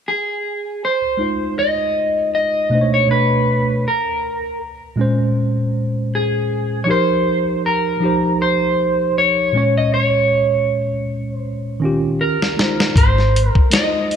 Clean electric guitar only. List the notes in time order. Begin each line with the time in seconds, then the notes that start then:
0.08 G#4
0.85 C5
1.59 D#5
2.35 D#5
2.94 C#5
3.11 B4
3.88 A#4
6.15 G#4
6.84 C#5
6.91 C5
7.66 A#4
8.42 C5
9.18 C#5
9.78 D#5
9.94 C#5
11.35 C5
12.21 A#4
12.98 C5
13.50 A#4
13.73 D#5